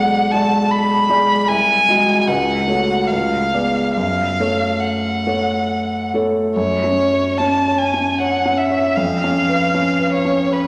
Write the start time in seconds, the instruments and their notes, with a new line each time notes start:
Already playing: grand piano B1 G#3 G#4 D5, violin F#5
0.32 grand piano G#3 G#4 D5, violin A5
0.71 violin B5
1.10 grand piano G#3 G#4 D5
1.48 grand piano C2, violin G#5
1.89 grand piano G#3 F#4 D#5
2.21 violin G#5
2.27 grand piano C#2, violin F#5
2.68 grand piano A3 F#4 C#5
3.07 violin F5
3.11 grand piano C#2
3.53 grand piano B3 G#4 D5
3.94 grand piano F#2, violin F5
4.40 grand piano A3 A4 C#5
4.80 violin F#5
5.27 grand piano A3 A4 C#5
6.14 grand piano A3 A4 C#5
6.56 grand piano F#2, violin C#5
6.84 grand piano C#4
7.13 grand piano C#5
7.38 grand piano C#4, violin A5
7.68 grand piano C#5
7.78 violin G#5
7.94 grand piano C#4
8.20 grand piano C#5, violin F#5
8.45 grand piano C#4
8.58 violin E5
8.70 grand piano C#5
8.96 grand piano F2, violin F5
9.24 grand piano C#4
9.48 grand piano B4
9.74 grand piano C#4
10.00 grand piano B4
10.13 violin C#5
10.25 grand piano C#4
10.52 grand piano B4, violin B4